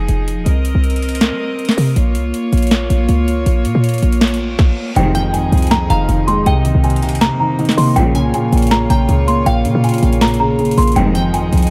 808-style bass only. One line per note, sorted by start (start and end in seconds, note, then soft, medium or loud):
0.09 0.39 F1 loud
0.37 0.46 D#1 loud
0.46 0.74 C2 loud
0.75 1.33 C2 loud
1.31 1.75 G3 loud
1.77 1.95 C3 loud
1.96 2.17 A#1 loud
2.15 2.33 C2 loud
2.53 2.89 A#1 loud
2.90 3.08 A#1 loud
3.09 3.45 C#2 loud
3.46 3.66 A#1 loud
3.65 3.74 A#2 loud
3.75 4.01 A#2 loud
4.03 4.57 A#1 loud
4.96 5.35 F1 loud
5.34 5.52 G1 loud
5.52 5.88 C2 loud
5.90 6.08 F1 loud
6.09 6.39 F1 loud
6.37 6.46 D#1 loud
6.46 6.74 C2 loud
6.75 7.33 C2 loud
7.31 7.75 G3 loud
7.77 7.96 C3 loud
7.96 8.16 A#1 loud
8.15 8.33 C2 loud
8.53 8.89 A#1 loud
8.90 9.08 A#1 loud
9.09 9.45 C#2 loud
9.46 9.66 A#1 loud
9.65 9.74 A#2 loud
9.75 10.01 A#2 loud
10.03 10.75 A#1 loud
10.78 10.96 A#1 loud
10.96 11.35 F1 loud
11.34 11.52 G1 loud
11.53 11.70 C2 loud